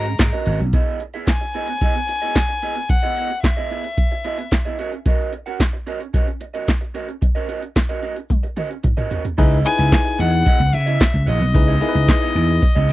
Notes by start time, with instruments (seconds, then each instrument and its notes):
Already playing: slap bass G#2, violin A#5
0.06 muted clean electric guitar stroke, closed hi-hat, shaker
0.19 slap bass G#2, muted clean electric guitar stroke, kick, snare, clap, closed hi-hat, shaker
0.33 clean electric guitar C#4 F#4 A#4 D#5, closed hi-hat, shaker
0.46 slap bass G#1, clean electric guitar C#4 F#4 A#4 D#5, closed hi-hat, shaker
0.59 slap bass B1, muted clean electric guitar stroke, closed hi-hat, shaker
0.73 clean electric guitar B3 E4 G#4 D#5, kick, closed hi-hat, shaker
0.87 shaker
1.00 muted clean electric guitar stroke, closed hi-hat
1.13 clean electric guitar B3 E4 G#4 E5, closed hi-hat, shaker
1.27 violin G#5, muted clean electric guitar stroke, kick, snare, clap, closed hi-hat, shaker
1.41 muted clean electric guitar stroke, shaker
1.54 clean electric guitar B3 E4 G#4 D#5, closed hi-hat, shaker
1.68 muted clean electric guitar stroke, closed hi-hat, shaker
1.81 clean electric guitar B3 E4 G#4 D#5, kick, closed hi-hat, shaker
1.95 muted clean electric guitar stroke, closed hi-hat, shaker
2.08 muted clean electric guitar stroke, closed hi-hat, shaker
2.22 clean electric guitar B3 E4 G#4 D#5, closed hi-hat, shaker
2.35 kick, snare, clap, closed hi-hat, shaker
2.49 muted clean electric guitar stroke, shaker
2.62 clean electric guitar B3 E4 G#4 D#5, closed hi-hat
2.76 muted clean electric guitar stroke, closed hi-hat, shaker
2.89 violin F#5, muted clean electric guitar stroke, kick, closed hi-hat, shaker
3.03 clean electric guitar B3 E4 G#4 D#5, shaker
3.16 clean electric guitar B3 E4 G#4 D#5, closed hi-hat
3.29 muted clean electric guitar stroke, closed hi-hat, shaker
3.43 violin E5, muted clean electric guitar stroke, kick, snare, clap, closed hi-hat, shaker
3.57 clean electric guitar B3 E4 G#4 D#5, shaker
3.71 clean electric guitar B3 E4 G#4 D#5, closed hi-hat, shaker
3.84 muted clean electric guitar stroke, closed hi-hat, shaker
3.97 kick, closed hi-hat, shaker
4.11 muted clean electric guitar stroke, closed hi-hat, shaker
4.24 clean electric guitar B3 E4 G#4 D#5, closed hi-hat, shaker
4.38 muted clean electric guitar stroke, closed hi-hat, shaker
4.51 muted clean electric guitar stroke, kick, snare, clap, closed hi-hat, shaker
4.65 clean electric guitar B3 E4 G#4 D#5, shaker
4.79 clean electric guitar C#4 F#4 A#4 D#5, closed hi-hat
4.92 muted clean electric guitar stroke, closed hi-hat, shaker
5.06 clean electric guitar C#4 F#4 A#4 D#5, kick, closed hi-hat, shaker
5.20 shaker
5.33 muted clean electric guitar stroke, closed hi-hat
5.46 clean electric guitar C#4 F#4 A#4 F#5, closed hi-hat, shaker
5.60 muted clean electric guitar stroke, kick, snare, clap, closed hi-hat, shaker
5.73 muted clean electric guitar stroke, shaker
5.87 clean electric guitar C#4 F#4 A#4 D#5, closed hi-hat, shaker
6.00 muted clean electric guitar stroke, closed hi-hat, shaker
6.14 clean electric guitar C#4 F#4 A#4 D#5, kick, closed hi-hat, shaker
6.27 muted clean electric guitar stroke, closed hi-hat, shaker
6.41 muted clean electric guitar stroke, closed hi-hat, shaker
6.54 clean electric guitar C#4 F#4 A#4 D#5, closed hi-hat, shaker
6.67 kick, snare, clap, closed hi-hat, shaker
6.81 muted clean electric guitar stroke, shaker
6.94 clean electric guitar C#4 F#4 A#4 D#5, closed hi-hat
7.08 muted clean electric guitar stroke, closed hi-hat, shaker
7.21 muted clean electric guitar stroke, kick, closed hi-hat, shaker
7.35 clean electric guitar C#4 F#4 A#4 D#5, closed hi-hat, shaker
7.49 clean electric guitar C#4 F#4 A#4 D#5, closed hi-hat
7.62 muted clean electric guitar stroke, closed hi-hat, shaker
7.76 muted clean electric guitar stroke, kick, snare, clap, closed hi-hat, shaker
7.89 clean electric guitar C#4 F#4 A#4 D#5, closed hi-hat, shaker
8.03 clean electric guitar C#4 F#4 A#4 D#5, closed hi-hat, shaker
8.16 muted clean electric guitar stroke, closed hi-hat, shaker
8.29 kick, closed hi-hat, high tom, shaker
8.43 muted clean electric guitar stroke, closed hi-hat, shaker
8.57 clean electric guitar C#4 F#4 A#4 D#5, closed hi-hat, mid tom, shaker
8.70 muted clean electric guitar stroke, closed hi-hat, shaker
8.83 muted clean electric guitar stroke, kick, closed hi-hat, mid tom, shaker
8.97 clean electric guitar C#4 F#4 A#4 D#5, closed hi-hat, mid tom, shaker
9.11 clean electric guitar C#4 F#4 A#4 D#5, closed hi-hat, floor tom
9.24 muted clean electric guitar stroke, closed hi-hat, floor tom, shaker
9.38 slap bass C#2, clean electric guitar B3 E4 G#4 D#5, tine electric piano D#4 E4 G#4 B4, kick, closed hi-hat, crash, shaker
9.52 shaker
9.65 tine electric piano D#4 E4 G#4 B4, violin G#5, muted clean electric guitar stroke, closed hi-hat, shaker
9.78 slap bass C#2, clean electric guitar B3 E4 G#4 E5, closed hi-hat, shaker
9.91 muted clean electric guitar stroke, kick, snare, clap, closed hi-hat, shaker
10.05 muted clean electric guitar stroke, shaker
10.18 slap bass E2, clean electric guitar B3 E4 G#4 D#5, violin F#5, closed hi-hat, shaker
10.32 muted clean electric guitar stroke, closed hi-hat, shaker
10.45 clean electric guitar B3 E4 G#4 D#5, kick, closed hi-hat, shaker
10.59 slap bass C#2, muted clean electric guitar stroke, closed hi-hat, shaker
10.73 slap bass C#3, violin E5, muted clean electric guitar stroke, closed hi-hat, shaker
10.86 clean electric guitar B3 E4 G#4 D#5, closed hi-hat, shaker
11.00 kick, snare, clap, closed hi-hat, shaker
11.13 slap bass C#2, muted clean electric guitar stroke, shaker
11.26 slap bass A#1, clean electric guitar B3 E4 G#4 D#5, violin D#5, closed hi-hat, shaker
11.41 slap bass B1, muted clean electric guitar stroke, closed hi-hat, shaker
11.54 slap bass C#2, tine electric piano D#4 E4 G#4 B4, muted clean electric guitar stroke, kick, closed hi-hat, shaker
11.67 clean electric guitar B3 E4 G#4 D#5, shaker
11.81 clean electric guitar B3 E4 G#4 D#5, tine electric piano D#4 E4 G#4 A#4, closed hi-hat, shaker
11.89 tine electric piano B4
11.94 slap bass C#2, muted clean electric guitar stroke, closed hi-hat, shaker
12.08 muted clean electric guitar stroke, kick, snare, clap, closed hi-hat, shaker
12.21 clean electric guitar B3 E4 G#4 D#5, shaker
12.35 slap bass E2, clean electric guitar B3 E4 G#4 D#5, closed hi-hat, shaker
12.48 muted clean electric guitar stroke, closed hi-hat, shaker
12.62 muted clean electric guitar stroke, kick, closed hi-hat, shaker
12.75 slap bass C#2, clean electric guitar B3 E4 G#4 D#5, closed hi-hat, shaker
12.89 slap bass C#3, clean electric guitar B3 E4, closed hi-hat